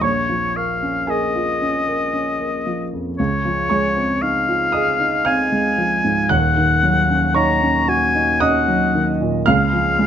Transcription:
0.01 grand piano A#1 C#5 C#6, oboe C#5
0.29 grand piano F3
0.56 grand piano A#3, oboe F5
0.82 grand piano C#4
1.07 grand piano A#3 G#4 G#5, oboe D#5
1.35 grand piano F4
1.61 grand piano C#4
1.88 grand piano A#3
2.14 grand piano C#4
2.40 grand piano A#3
2.67 grand piano F3
2.93 grand piano F2
3.18 grand piano C#2, oboe C#5
3.45 grand piano F3
3.69 grand piano G#3 C#5 C#6
3.97 grand piano C4
4.22 grand piano D#4, oboe F5
4.48 grand piano F4
4.72 grand piano G#4 D#5 D#6
5.00 grand piano D#4
5.25 grand piano C4 F5 F6, oboe G#5
5.52 grand piano G#3
5.78 grand piano F3
6.04 grand piano G#2
6.29 grand piano D#1 D#2 F#5 F#6, oboe F#5
6.57 grand piano D#3
6.83 grand piano F#3
7.10 grand piano C#4
7.34 grand piano D#4 C#5 C#6, oboe A#5
7.63 grand piano C#4
7.88 grand piano F#4, oboe G#5
8.15 grand piano D#4
8.40 grand piano C#4 D#5 D#6, oboe F#5
8.68 grand piano F#3
8.94 grand piano D#3
9.21 grand piano A#2
9.46 grand piano C#2 F5 F6, oboe F5
9.73 grand piano F3
9.99 grand piano G#3

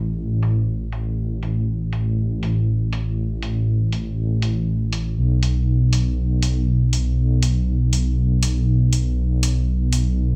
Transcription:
Already playing: detuned saw bass A1
0.43 open hi-hat
0.92 open hi-hat
1.43 open hi-hat
1.93 open hi-hat
2.43 open hi-hat
2.93 open hi-hat
3.42 open hi-hat
3.92 open hi-hat
4.42 open hi-hat
4.93 open hi-hat
5.17 detuned saw bass B1
5.43 open hi-hat
5.93 open hi-hat
6.43 open hi-hat
6.93 open hi-hat
7.43 open hi-hat
7.93 open hi-hat
8.43 open hi-hat
8.93 open hi-hat
9.43 open hi-hat
9.93 open hi-hat

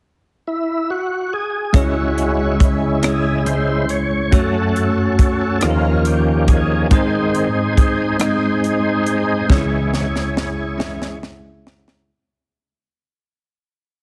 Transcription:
0.47 tonewheel organ E4
0.90 tonewheel organ F#4
1.33 tonewheel organ G#4
1.73 tine electric piano C#2 C#3 G#3 C#4 E4 G#4 C#5, tonewheel organ C#3 G#3 C#4 E4 F#4, kick, closed hi-hat
2.18 closed hi-hat
2.60 kick, closed hi-hat
3.02 tine electric piano G#3 C#4 E4 G#4 C#5, tonewheel organ G#4, cross-stick, closed hi-hat
3.46 tonewheel organ C#3 G#3 E4 C5, closed hi-hat
3.89 tonewheel organ C#5, closed hi-hat
4.31 tine electric piano F#2 A3 C#4 F#4 A4 C#5, tonewheel organ F#3 A3 C#4 F#4 A4, kick, closed hi-hat
4.76 closed hi-hat
5.19 kick, closed hi-hat
5.61 tine electric piano D#2 D#3 C#4 D#4 F4 G4 A4, tonewheel organ D#3 F3 A#3 C#4 F4, cross-stick, closed hi-hat
5.70 tine electric piano A#4
6.05 tonewheel organ G4, closed hi-hat
6.48 tonewheel organ G#4, kick, closed hi-hat
6.91 tonewheel organ G#2 D#3 C4 D#4 G#4 C5, tine electric piano G#2 G#3 C4 D#4 G#4 C5, kick, closed hi-hat
7.35 closed hi-hat
7.77 kick, closed hi-hat
8.20 tine electric piano G#3 C4 D#4 G#4 D#5, tonewheel organ G#4 C5, cross-stick, closed hi-hat
8.64 closed hi-hat
9.06 closed hi-hat
9.48 tine electric piano C#2 C#3 G#3 C#4 D#4 G#4 C#5, tonewheel organ C#3 E3 G#3 E4 G#4 C#5, kick, snare
9.57 tine electric piano E4
9.94 snare
10.16 snare
10.37 snare
10.78 tonewheel organ C#3 E3 G#3, tine electric piano G#3 C#4 E4 G#4 E5, snare
11.02 snare
11.23 snare
11.67 snare
11.88 snare

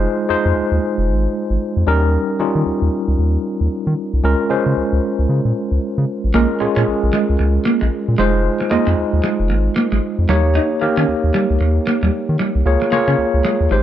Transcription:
Already playing: tine electric piano G#3 D#4 F4 C5
0.29 analog synth bass F2, tine electric piano G#3 D#4 F4 C5
0.46 analog synth bass F2
0.56 analog synth bass D#2
0.72 analog synth bass D#2
0.98 analog synth bass F1
1.09 analog synth bass G#1
1.50 analog synth bass G#1
1.77 analog synth bass F2
1.87 analog synth bass D#2, tine electric piano G3 C#4 D#4 A#4
2.39 analog synth bass D#3, tine electric piano G3 C#4 D#4 F4
2.55 analog synth bass D#3
2.66 analog synth bass D#2
2.82 analog synth bass D#2
3.08 analog synth bass C#2
3.19 analog synth bass D#2
3.61 analog synth bass D#2
3.87 analog synth bass D#3
4.13 analog synth bass C2
4.24 analog synth bass C#2, tine electric piano G#3 C#4 F4 A#4
4.49 analog synth bass C#3, tine electric piano G#3 C#4 F4 C5
4.66 analog synth bass C#3
4.77 analog synth bass C#2
4.93 analog synth bass C#2
5.19 analog synth bass C#2
5.29 analog synth bass C#3
5.45 analog synth bass A#2
5.72 analog synth bass C#2
5.98 analog synth bass C#3
6.24 analog synth bass A1
6.34 analog synth bass A#1, tine electric piano G#3 C#4 F4 A#4, clean electric guitar A#3
6.60 analog synth bass A#2, tine electric piano G#3 C#4 F4 G#4, muted clean electric guitar stroke
6.76 analog synth bass A#2, clean electric guitar C#4
6.87 analog synth bass A#1
7.03 analog synth bass A#1
7.13 clean electric guitar G#3
7.29 analog synth bass C#2
7.39 analog synth bass C#2, muted clean electric guitar stroke
7.65 clean electric guitar A#3
7.81 analog synth bass A#1, clean electric guitar G#3
8.08 analog synth bass A#2
8.18 analog synth bass F1, clean electric guitar G#3, tine electric piano G#3 D#4 F4 C5
8.61 muted clean electric guitar stroke
8.71 analog synth bass F2, tine electric piano G#3 D#4 F4 D#5, clean electric guitar A#3
8.87 analog synth bass F2, clean electric guitar C4
8.98 analog synth bass D#2
9.13 analog synth bass D#2
9.24 clean electric guitar G#3
9.40 analog synth bass F1
9.50 analog synth bass G#1, muted clean electric guitar stroke
9.76 clean electric guitar A#3
9.92 analog synth bass G#1, clean electric guitar G#3
10.19 analog synth bass F2
10.29 analog synth bass D#2, clean electric guitar G3, tine electric piano A#3 D#4 G4 C#5
10.55 clean electric guitar D#4
10.81 analog synth bass D#3, tine electric piano A#3 D#4 G4 A#4, muted clean electric guitar stroke
10.97 analog synth bass D#3, clean electric guitar C#4
11.08 analog synth bass D#2
11.24 analog synth bass D#2
11.34 clean electric guitar G3
11.50 analog synth bass C#2
11.61 analog synth bass D#2, muted clean electric guitar stroke
11.87 clean electric guitar A#3
12.03 analog synth bass D#2, clean electric guitar G3
12.29 analog synth bass D#3
12.39 clean electric guitar G3
12.55 analog synth bass C2
12.66 analog synth bass C#2, tine electric piano A#3 F4 G#4 C#5
12.82 muted clean electric guitar stroke
12.92 analog synth bass C#3, tine electric piano A#3 F4 G#4 C#5, clean electric guitar A#3
13.08 analog synth bass C#3, clean electric guitar C#4
13.18 analog synth bass C#2
13.34 analog synth bass C#2
13.45 clean electric guitar G#3
13.61 analog synth bass D#2
13.71 analog synth bass G#1, tine electric piano G#3 D#4 G4 C5, muted clean electric guitar stroke

